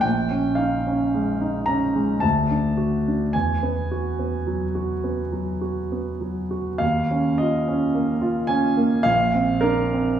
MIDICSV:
0, 0, Header, 1, 2, 480
1, 0, Start_track
1, 0, Tempo, 1094891
1, 22, Time_signature, 3, 2, 24, 8
1, 1462, Tempo, 1138520
1, 2422, Tempo, 1176471
1, 3382, Tempo, 1096892
1, 3862, Tempo, 1174168
1, 4326, End_track
2, 0, Start_track
2, 0, Title_t, "Grand piano"
2, 0, Program_c, 0, 0
2, 0, Control_c, 0, 64, 127
2, 4, Note_on_c, 0, 79, 72
2, 13, Note_on_c, 0, 34, 38
2, 29, Control_c, 0, 64, 0
2, 112, Control_c, 0, 64, 127
2, 134, Note_on_c, 0, 61, 33
2, 242, Note_on_c, 0, 77, 50
2, 253, Note_on_c, 0, 63, 30
2, 256, Note_off_c, 0, 79, 0
2, 334, Note_off_c, 0, 61, 0
2, 380, Note_on_c, 0, 61, 33
2, 454, Note_off_c, 0, 63, 0
2, 502, Note_on_c, 0, 56, 32
2, 575, Note_off_c, 0, 61, 0
2, 620, Note_on_c, 0, 63, 34
2, 694, Note_off_c, 0, 56, 0
2, 727, Note_on_c, 0, 82, 60
2, 731, Note_off_c, 0, 77, 0
2, 736, Note_on_c, 0, 61, 30
2, 809, Note_off_c, 0, 63, 0
2, 857, Note_on_c, 0, 56, 31
2, 927, Note_off_c, 0, 61, 0
2, 955, Note_off_c, 0, 34, 0
2, 966, Note_on_c, 0, 81, 60
2, 969, Note_off_c, 0, 82, 0
2, 974, Note_on_c, 0, 38, 39
2, 976, Note_off_c, 0, 56, 0
2, 986, Control_c, 0, 64, 0
2, 1070, Control_c, 0, 64, 127
2, 1098, Note_on_c, 0, 62, 23
2, 1216, Note_on_c, 0, 66, 30
2, 1292, Note_off_c, 0, 62, 0
2, 1348, Note_on_c, 0, 62, 25
2, 1413, Note_off_c, 0, 66, 0
2, 1447, Note_off_c, 0, 38, 0
2, 1458, Note_off_c, 0, 81, 0
2, 1460, Note_on_c, 0, 80, 64
2, 1467, Note_off_c, 0, 62, 0
2, 1470, Control_c, 0, 64, 0
2, 1470, Note_on_c, 0, 40, 33
2, 1541, Control_c, 0, 64, 127
2, 1586, Note_on_c, 0, 59, 31
2, 1707, Note_on_c, 0, 66, 27
2, 1776, Note_off_c, 0, 59, 0
2, 1823, Note_on_c, 0, 59, 28
2, 1896, Note_off_c, 0, 66, 0
2, 1939, Note_on_c, 0, 54, 30
2, 2015, Note_off_c, 0, 59, 0
2, 2059, Note_on_c, 0, 66, 31
2, 2133, Note_off_c, 0, 54, 0
2, 2180, Note_on_c, 0, 59, 28
2, 2253, Note_off_c, 0, 66, 0
2, 2300, Note_on_c, 0, 54, 30
2, 2374, Note_off_c, 0, 59, 0
2, 2423, Note_off_c, 0, 80, 0
2, 2423, Note_on_c, 0, 66, 27
2, 2494, Note_off_c, 0, 54, 0
2, 2547, Note_on_c, 0, 59, 26
2, 2616, Note_off_c, 0, 66, 0
2, 2665, Note_on_c, 0, 54, 29
2, 2741, Note_off_c, 0, 59, 0
2, 2787, Note_on_c, 0, 66, 27
2, 2863, Note_off_c, 0, 54, 0
2, 2900, Note_off_c, 0, 40, 0
2, 2900, Note_on_c, 0, 77, 64
2, 2906, Note_on_c, 0, 39, 35
2, 2912, Note_off_c, 0, 66, 0
2, 2920, Control_c, 0, 64, 0
2, 2994, Control_c, 0, 64, 127
2, 3032, Note_on_c, 0, 61, 33
2, 3143, Note_on_c, 0, 75, 57
2, 3149, Note_off_c, 0, 77, 0
2, 3153, Note_on_c, 0, 65, 30
2, 3224, Note_off_c, 0, 61, 0
2, 3266, Note_on_c, 0, 61, 31
2, 3338, Note_off_c, 0, 65, 0
2, 3375, Note_on_c, 0, 58, 34
2, 3453, Note_off_c, 0, 61, 0
2, 3492, Note_on_c, 0, 65, 39
2, 3570, Note_off_c, 0, 58, 0
2, 3604, Note_on_c, 0, 80, 67
2, 3612, Note_on_c, 0, 61, 39
2, 3616, Note_off_c, 0, 75, 0
2, 3688, Note_off_c, 0, 65, 0
2, 3736, Note_on_c, 0, 58, 41
2, 3810, Note_off_c, 0, 61, 0
2, 3843, Note_off_c, 0, 39, 0
2, 3849, Note_on_c, 0, 77, 80
2, 3855, Note_off_c, 0, 80, 0
2, 3859, Note_on_c, 0, 34, 46
2, 3861, Note_off_c, 0, 58, 0
2, 3871, Control_c, 0, 64, 0
2, 3953, Control_c, 0, 64, 127
2, 3976, Note_on_c, 0, 60, 33
2, 4085, Note_on_c, 0, 70, 74
2, 4091, Note_off_c, 0, 77, 0
2, 4093, Note_on_c, 0, 62, 40
2, 4169, Note_off_c, 0, 60, 0
2, 4216, Note_on_c, 0, 60, 32
2, 4292, Note_off_c, 0, 62, 0
2, 4326, Note_off_c, 0, 34, 0
2, 4326, Note_off_c, 0, 60, 0
2, 4326, Note_off_c, 0, 70, 0
2, 4326, End_track
0, 0, End_of_file